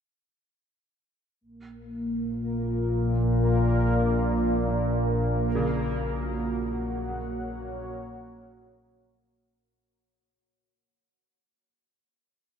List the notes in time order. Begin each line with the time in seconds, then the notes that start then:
1.41 A#1 A#2 A#3 A#4
2.25 F4
3.22 D5 F5
4.68 A#2
5.55 C#3
5.68 F#4
6.16 F#5
6.90 C#5